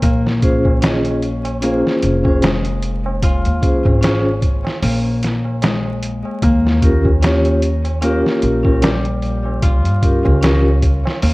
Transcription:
Already playing: harp C#4
0.02 upright bass A#1, harp A#3, kick, closed hi-hat, tabla na
0.25 snare, tabla na
0.41 vibraphone C#4 F4 G#4 C5, kick, closed hi-hat
0.65 kick, tabla na
0.81 vibraphone C#4 F4 G#4 D#5, harp C#4, snare, closed hi-hat, tabla na
1.05 closed hi-hat, tabla na
1.22 closed hi-hat
1.45 closed hi-hat, tabla na
1.61 harp A#3, vibraphone C#4 F4 G#4 C5, closed hi-hat, tabla na
1.85 snare, tabla na
2.02 upright bass F1, closed hi-hat
2.24 vibraphone C#4 F4 G#4 C5, kick, tabla na
2.42 harp G#3, snare, closed hi-hat, tabla na
2.65 closed hi-hat, tabla na
2.82 closed hi-hat
3.06 tabla na
3.22 harp F4, kick, closed hi-hat, tabla na
3.45 upright bass D#2, closed hi-hat, tabla na
3.61 vibraphone C#4 F4 G#4 C5, kick, closed hi-hat
3.85 upright bass G#1, kick, tabla na
4.01 vibraphone C#4 F4 G#4 C5, harp C#4, snare, closed hi-hat, tabla na
4.24 tabla na
4.42 kick, closed hi-hat
4.65 snare, tabla na
4.83 upright bass A#1, harp A#3, open hi-hat, tabla na
5.05 tabla na
5.23 snare, closed hi-hat
5.45 tabla na
5.62 harp G#3, snare, closed hi-hat, tabla na
5.86 tabla na
6.03 closed hi-hat
6.25 tabla na
6.42 upright bass D#2, harp A#3, kick, closed hi-hat, tabla na
6.65 snare, tabla na
6.81 vibraphone C#4 F4 G4 A#4, kick, closed hi-hat
7.05 kick, tabla na
7.21 vibraphone C#4 F4 G4 C#5, harp C#4, snare, closed hi-hat, tabla na
7.45 closed hi-hat, tabla na
7.62 closed hi-hat
7.85 closed hi-hat, tabla na
8.01 harp A#3, vibraphone C#4 F4 G4 A#4, closed hi-hat, tabla na
8.25 snare, tabla na
8.42 upright bass A#1, closed hi-hat
8.64 vibraphone C#4 F4 G4 A#4, kick, tabla na
8.82 harp G3, snare, closed hi-hat, tabla na
9.05 closed hi-hat, tabla na
9.22 closed hi-hat
9.45 tabla na
9.62 harp F4, kick, closed hi-hat, tabla na
9.85 upright bass G2, closed hi-hat, tabla na
10.01 vibraphone C#4 F4 G4 A#4, kick, closed hi-hat
10.25 upright bass C#2, kick, tabla na
10.41 vibraphone C#4 F4 G4 A#4, harp C#4, snare, closed hi-hat, tabla na
10.67 tabla na
10.82 kick, closed hi-hat
11.05 snare, tabla na
11.22 upright bass D#2, harp A#3, open hi-hat, tabla na

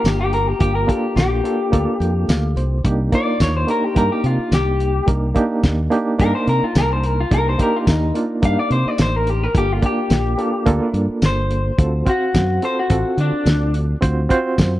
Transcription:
Already playing: reed electric piano A#3 D4 F4 G4
0.04 fingered electric bass G1, clean electric guitar G4, snare, closed hi-hat, tambourine
0.21 clean electric guitar G4
0.33 clean electric guitar A#4, closed hi-hat
0.48 clean electric guitar G4
0.59 fingered electric bass G1, reed electric piano A#3 D4 F4 G4, clean electric guitar G4, kick, closed hi-hat
0.75 clean electric guitar A#4
0.87 reed electric piano A#3 D4 F4 A4, clean electric guitar G4, kick, closed hi-hat
1.16 fingered electric bass A#1, clean electric guitar G4, snare, closed hi-hat, tambourine
1.44 reed electric piano A#3 D4 F4 A4, closed hi-hat
1.72 fingered electric bass D2, reed electric piano A#3 D4 F4 A4, kick, closed hi-hat
2.00 fingered electric bass F2, reed electric piano G5, closed hi-hat
2.29 fingered electric bass D2, reed electric piano F5, snare, closed hi-hat, tambourine
2.56 fingered electric bass C2, reed electric piano C5, closed hi-hat
2.84 fingered electric bass C2, reed electric piano A#3 D4 D#4 G4, kick, closed hi-hat
3.12 reed electric piano A#3 D4 D#4 F4, clean electric guitar D5, kick, closed hi-hat
3.40 fingered electric bass D#2, clean electric guitar C#5, kick, snare, closed hi-hat, tambourine
3.57 clean electric guitar C5
3.67 reed electric piano A#3 D4 D#4 G4, clean electric guitar A#4, closed hi-hat
3.84 clean electric guitar G4
3.95 fingered electric bass G2, reed electric piano A#3 D4 D#4 G4, clean electric guitar A#4, kick, closed hi-hat
4.12 clean electric guitar G4
4.24 fingered electric bass C3, clean electric guitar F4, closed hi-hat
4.38 muted fingered electric bass stroke
4.51 fingered electric bass C2, clean electric guitar G4, snare, closed hi-hat, tambourine
4.80 closed hi-hat
5.06 fingered electric bass C2, reed electric piano A#3 D4 D#4 A#4, kick, closed hi-hat
5.35 reed electric piano A#3 D4 D#4 G4, kick, closed hi-hat
5.63 fingered electric bass D#2, kick, snare, closed hi-hat, tambourine
5.90 reed electric piano A#3 D4 D#4 G4, closed hi-hat
6.18 fingered electric bass G2, reed electric piano A#3 D4 D#4 A#4, clean electric guitar A#4, kick, closed hi-hat
6.35 clean electric guitar C5
6.47 fingered electric bass C3, clean electric guitar A#4, closed hi-hat
6.62 clean electric guitar F4, muted fingered electric bass stroke
6.75 fingered electric bass C2, clean electric guitar A#4, snare, closed hi-hat, tambourine
6.93 clean electric guitar C5
7.04 clean electric guitar A#4, closed hi-hat
7.20 clean electric guitar F4
7.31 fingered electric bass C2, reed electric piano A#3 D4 D#4 G4, clean electric guitar A#4, kick, closed hi-hat
7.49 clean electric guitar C5
7.58 reed electric piano A#3 D4 D#4 G4, kick, closed hi-hat
7.62 clean electric guitar A#4
7.76 clean electric guitar F4
7.87 fingered electric bass D#2, clean electric guitar D#4, kick, snare, closed hi-hat, tambourine
8.14 reed electric piano A#3 D4 D#4 F4, closed hi-hat
8.42 fingered electric bass G2, reed electric piano A#3 D4 D#4 G4, clean electric guitar F5, kick, closed hi-hat
8.59 clean electric guitar D5
8.70 fingered electric bass C3, clean electric guitar C5, closed hi-hat
8.86 clean electric guitar D5, muted fingered electric bass stroke
8.98 fingered electric bass A1, clean electric guitar C5, snare, closed hi-hat, tambourine
9.16 clean electric guitar A#4
9.27 clean electric guitar G4, closed hi-hat
9.44 clean electric guitar A#4
9.54 fingered electric bass G1, reed electric piano A#3 D4 F4 A4, clean electric guitar G4, kick, closed hi-hat
9.72 clean electric guitar F4
9.82 reed electric piano A#3 D4 F4 G4, clean electric guitar G4, kick, closed hi-hat
10.10 fingered electric bass A#1, snare, closed hi-hat, tambourine
10.38 reed electric piano A#3 D4 F4 A4, closed hi-hat
10.66 fingered electric bass D2, reed electric piano A#3 D4 F4 A4, kick, closed hi-hat
10.93 fingered electric bass G2, closed hi-hat
11.08 muted fingered electric bass stroke
11.22 fingered electric bass G1, clean electric guitar C5, snare, closed hi-hat, tambourine
11.51 closed hi-hat
11.78 fingered electric bass D2, reed electric piano C4 F4 F#4 A4, kick, closed hi-hat
12.06 reed electric piano C4 F#4 C5 F5, clean electric guitar F#4, kick, closed hi-hat
12.35 fingered electric bass F#2, kick, snare, closed hi-hat, tambourine
12.62 reed electric piano C4 F4 F#4 A4, clean electric guitar C5, closed hi-hat
12.79 clean electric guitar F#4
12.90 fingered electric bass A1, reed electric piano C4 F4 F#4 A4, kick, closed hi-hat
13.17 fingered electric bass D3, clean electric guitar D4, closed hi-hat
13.32 muted fingered electric bass stroke
13.46 fingered electric bass D2, snare, closed hi-hat, tambourine
13.74 closed hi-hat
14.01 fingered electric bass D2, reed electric piano C4 F4 F#4 C5, kick, closed hi-hat
14.29 reed electric piano C4 F4 F#4 C5, kick, closed hi-hat
14.58 fingered electric bass F#2, kick, snare, closed hi-hat, tambourine

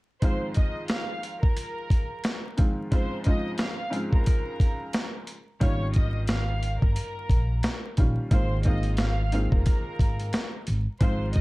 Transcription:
0.22 upright piano G#2 D#3 F3 G#3 C4 F4, violin section C5 C6, kick, closed hi-hat
0.54 violin section D#5 D#6, kick, closed hi-hat
0.88 violin section F5 F6, snare, closed hi-hat
1.23 closed hi-hat
1.42 violin section A#4 A#5, kick
1.57 closed hi-hat
1.90 kick, closed hi-hat
2.24 snare, closed hi-hat
2.57 upright piano G#2 D#3 F3 G#3 C4 F4, kick, closed hi-hat
2.91 upright piano G#2 C#3 F3 G#3 C4 F4, violin section C5 C6, kick, closed hi-hat
3.24 upright piano G#2 C#3 F3 G#3 C4 F4, violin section D#5 D#6, kick, closed hi-hat
3.58 violin section F5 F6, snare, closed hi-hat
3.90 upright piano G#2 C#3 F3 G#3 C4 F4, closed hi-hat
4.12 violin section A#4 A#5, kick
4.26 kick, closed hi-hat
4.60 kick, closed hi-hat
4.93 snare, closed hi-hat
5.27 closed hi-hat
5.60 upright bass G#1, upright piano D#3 G3 A#3 C#4 F4, violin section C#5 C#6, kick, closed hi-hat
5.94 violin section D#5 D#6, kick, closed hi-hat
6.27 violin section F5 F6, snare, closed hi-hat
6.63 closed hi-hat
6.81 upright bass G1, violin section A#4 A#5, kick
6.96 closed hi-hat
7.30 upright bass A#1, kick, closed hi-hat
7.63 snare, closed hi-hat
7.97 upright bass A#1, upright piano D#3 G3 A#3 C#4 F4, kick, closed hi-hat
8.31 upright bass G#1, upright piano D#3 G#3 A#3 C4 F4, violin section C5 C6, kick, closed hi-hat
8.63 upright piano D#3 G#3 A#3 C4 F4, violin section D#5 D#6, kick, closed hi-hat
8.83 closed hi-hat
8.97 violin section F5 F6, snare, closed hi-hat
9.32 upright piano D#3 G#3 A#3 C4 F4, closed hi-hat
9.52 upright bass F1, violin section A#4 A#5, kick
9.66 kick, closed hi-hat
9.99 upright bass G#1, kick, closed hi-hat
10.20 closed hi-hat
10.33 snare, closed hi-hat
10.67 upright bass G#1, closed hi-hat
11.00 upright bass G#1, upright piano G#2 D#3 F3 G#3 C4 F4, violin section C5 C6, kick, closed hi-hat
11.33 violin section D#5 D#6, kick, closed hi-hat

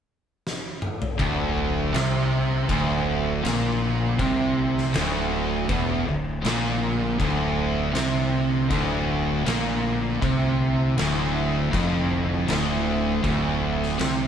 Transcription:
0.47 snare
0.82 mid tom
1.02 floor tom
1.18 fingered electric bass D1, distorted electric guitar D2, synth drone D3 A3 E4, kick, crash
1.94 fingered electric bass C2, distorted electric guitar C3, snare, crash
2.68 fingered electric bass D1, distorted electric guitar D2, kick, crash
3.44 fingered electric bass A#1, distorted electric guitar A#2, snare, crash
4.19 fingered electric bass C2, distorted electric guitar C3, kick, crash
4.78 snare
4.94 fingered electric bass D1, distorted electric guitar D2, snare, crash
5.68 fingered electric bass E1, distorted electric guitar E2, kick, crash
6.07 fingered electric bass D1, distorted electric guitar D2
6.44 fingered electric bass A#1, distorted electric guitar A#2, snare, crash
7.20 fingered electric bass D1, distorted electric guitar D2, kick, crash
7.94 fingered electric bass C2, distorted electric guitar C3, snare, crash
8.70 fingered electric bass D1, distorted electric guitar D2, kick, crash
9.46 fingered electric bass A#1, distorted electric guitar A#2, snare, crash
10.22 fingered electric bass C2, distorted electric guitar C3, kick, crash
10.97 fingered electric bass D1, distorted electric guitar D2, snare, crash
11.73 fingered electric bass F1, distorted electric guitar F2, kick, crash
12.48 fingered electric bass D1, distorted electric guitar D2, snare, crash
13.24 fingered electric bass D1, distorted electric guitar D2, kick, crash
13.83 snare
13.99 fingered electric bass C2, distorted electric guitar C3, snare, crash

